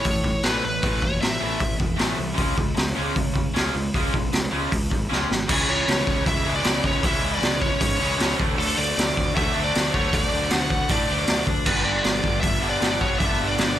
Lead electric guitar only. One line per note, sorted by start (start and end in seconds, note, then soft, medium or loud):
0.00 0.46 C#5 medium
0.44 0.62 B4 medium
0.65 1.04 B4 medium
1.04 1.21 C#5 medium
1.22 1.76 E5 medium
5.52 5.68 G#4 medium
5.69 6.22 C#5 loud
6.28 6.55 E5 loud
6.56 6.82 D5 loud
6.86 7.05 C#5 medium
7.06 7.31 E5 loud
7.35 7.60 D5 loud
7.61 7.80 C#5 medium
7.81 8.35 C#5 medium
8.59 8.78 A4 loud
8.77 9.31 D5 loud
9.36 9.62 E5 loud
9.64 9.91 D5 loud
9.94 10.14 C#5 loud
10.14 10.53 D5 loud
10.51 10.86 F#5 loud
10.91 11.44 D5 loud
11.67 11.84 B4 loud
11.85 12.40 D5 loud
12.41 12.69 E5 loud
12.70 12.98 D5 loud
13.01 13.19 C#5 medium
13.19 13.48 E5 loud
13.48 13.76 D5 loud